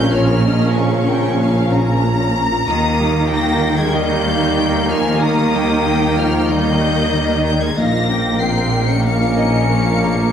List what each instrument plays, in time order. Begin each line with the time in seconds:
Already playing: tuba A#1, double bass section A#1, cello section A#2, trombone section F3 C#4, french horn section G3, synth drone A#3 C#4 F4 A#4, viola section C#4 A#4, felt piano G4 F5 A#5, violin section F5 G6, impact
0.10 french horn section F3, synth arpeggio sound A#3, violin section C#5 F6
0.28 synth arpeggio sound F4
0.44 synth arpeggio sound C#4, violin section D#5
0.74 french horn section C#3, synth arpeggio sound A#3, violin section F5 C#6
0.91 synth arpeggio sound A#4
1.08 synth arpeggio sound A#4, violin section G5
1.24 synth arpeggio sound C#4
1.40 synth arpeggio sound A#3, violin section F5
1.56 synth arpeggio sound F4
1.72 synth arpeggio sound C#4, violin section A#5
1.88 synth arpeggio sound F4
2.04 synth arpeggio sound A#3
2.20 synth arpeggio sound F4
2.52 synth arpeggio sound F4
2.67 double bass section D#2, tuba D#2, synth arpeggio sound D#3, french horn section D#3, cello section D#3, trombone section D#3 A#3, synth drone G3 A#3 D#4 A#4, viola section A#3 A#4, violin section D#6
2.84 synth arpeggio sound A#3
3.00 synth arpeggio sound G3
3.31 synth arpeggio sound D#3, french horn section A#3, violin section G5 A#6
3.48 synth arpeggio sound D#4
3.63 synth arpeggio sound D#4
3.78 synth arpeggio sound G3, french horn section G#3, violin section G#6
3.95 synth arpeggio sound D#3, french horn section G3, violin section D#5 G6
4.11 synth arpeggio sound A#3
4.26 synth arpeggio sound G3, violin section F5
4.43 synth arpeggio sound A#3
4.59 synth arpeggio sound D#3, violin section G5
4.75 synth arpeggio sound A#3
4.89 french horn section F3, violin section G#5 F6
5.07 synth arpeggio sound A#3
5.22 french horn section D#3, synth arpeggio sound D#3, violin section A#5 D#6
5.39 synth arpeggio sound A#3
5.55 synth arpeggio sound G3, violin section G5
5.87 synth arpeggio sound D#3
6.02 synth arpeggio sound D#4
6.16 french horn section F3, synth arpeggio sound D#4, violin section F6
6.34 synth arpeggio sound G3
6.49 synth arpeggio sound D#3, french horn section G3, violin section D#5 G6
6.66 synth arpeggio sound A#3
6.81 synth arpeggio sound G3
6.97 synth arpeggio sound A#3
7.14 synth arpeggio sound D#3
7.29 synth arpeggio sound A#3
7.44 french horn section G3, violin section G6
7.62 french horn section G#3, synth arpeggio sound A#3, violin section G#6
7.76 double bass section A#1, tuba A#1, cello section A#2, synth drone F3 A#3 F4 A#4, trombone section F3 A#3, viola section A#3 A#4, synth arpeggio sound A#3, french horn section A#3, felt piano D#4 D#5, violin section F5 A#6
7.94 synth arpeggio sound F4
8.10 synth arpeggio sound C#4, violin section G5
8.41 synth arpeggio sound A#3, french horn section C4, violin section C7
8.57 synth arpeggio sound A#4
8.73 synth arpeggio sound A#4
8.89 french horn section C#4, synth arpeggio sound C#4, violin section C#7
9.04 synth arpeggio sound A#3, french horn section C#4, violin section F5 C#7
9.21 synth arpeggio sound F4
9.38 synth arpeggio sound C#4, felt piano D#4 D#5, violin section D#5
9.54 synth arpeggio sound F4
9.69 synth arpeggio sound A#3, violin section F5
9.86 synth arpeggio sound F4
10.03 felt piano G#4 A#5
10.18 synth arpeggio sound F4